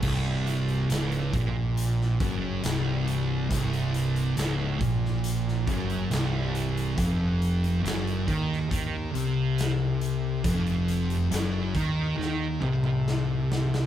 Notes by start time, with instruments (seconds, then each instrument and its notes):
0.02 fingered electric bass C1, distorted electric guitar C2, kick, crash
0.47 snare, closed hi-hat
0.68 closed hi-hat
0.90 fingered electric bass C#1, distorted electric guitar C#2, snare, closed hi-hat
1.11 closed hi-hat
1.33 fingered electric bass A#1, distorted electric guitar A#2, kick, closed hi-hat
1.77 closed hi-hat
2.01 snare
2.20 fingered electric bass F#1, distorted electric guitar F#2, kick, closed hi-hat
2.63 fingered electric bass C1, distorted electric guitar C2, snare, closed hi-hat
3.07 closed hi-hat
3.50 fingered electric bass C1, distorted electric guitar C2, kick, closed hi-hat
3.73 closed hi-hat
3.94 closed hi-hat
4.16 closed hi-hat
4.37 fingered electric bass C#1, distorted electric guitar C#2, snare, closed hi-hat
4.80 fingered electric bass A#1, distorted electric guitar A#2, kick, closed hi-hat
5.06 snare
5.24 closed hi-hat
5.48 snare
5.67 fingered electric bass F#1, distorted electric guitar F#2, kick, closed hi-hat
5.90 closed hi-hat
6.10 fingered electric bass C1, distorted electric guitar C2, snare, closed hi-hat
6.55 closed hi-hat
6.77 closed hi-hat
6.97 fingered electric bass F1, distorted electric guitar F2, kick, closed hi-hat
7.42 closed hi-hat
7.64 closed hi-hat
7.84 fingered electric bass F#1, distorted electric guitar F#2, snare, closed hi-hat
8.07 closed hi-hat
8.28 fingered electric bass D#2, distorted electric guitar D#3, kick, closed hi-hat
8.53 snare
8.71 fingered electric bass D#2, distorted electric guitar D#3, kick, closed hi-hat
9.14 fingered electric bass C2, distorted electric guitar C3, closed hi-hat
9.58 snare, closed hi-hat
10.01 closed hi-hat
10.44 fingered electric bass F1, distorted electric guitar F2, kick, closed hi-hat
10.66 closed hi-hat
10.88 closed hi-hat
11.10 closed hi-hat
11.31 fingered electric bass F#1, distorted electric guitar F#2, snare, closed hi-hat
11.74 fingered electric bass D#2, distorted electric guitar D#3, kick, closed hi-hat
12.17 fingered electric bass D#2, distorted electric guitar D#3
12.21 snare
12.61 fingered electric bass C2, distorted electric guitar C3, mid tom
12.84 mid tom
13.08 snare
13.52 snare
13.74 snare